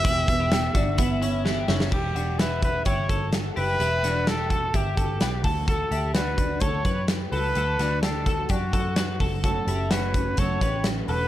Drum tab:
CC |----------------|x---------------|----------------|----------------|
HH |x-x-x-x-x-x-----|--x-x-x-x-x-x-o-|x-x-x-x-x-x-x-o-|x-x-x-x-x-x-x-o-|
SD |----o-------o-oo|----o-------o---|--o-o-------o---|----o-------o---|
BD |o-o---o-o-------|o-----o-o-o-----|------o-o-o---o-|o-----o-o-o-----|

CC |----------------|----------------|
HH |x-x-x-x-x-x-x-o-|x-x-x-x-x-x-x-o-|
SD |--o-o-------o---|----o-------o---|
BD |------o-o-o---o-|o-----o-o-o-----|